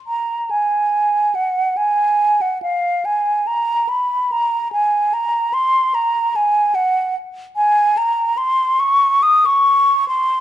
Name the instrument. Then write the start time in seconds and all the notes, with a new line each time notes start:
flute
0.07 A#5
0.51 G#5
1.35 F#5
1.77 G#5
2.41 F#5
2.62 F5
3.05 G#5
3.47 A#5
3.89 B5
4.32 A#5
4.73 G#5
5.14 A#5
5.54 C6
5.95 A#5
6.36 G#5
6.75 F#5
7.56 G#5
7.97 A#5
8.37 C6
8.80 C#6
9.23 D#6
9.46 C#6
10.08 C6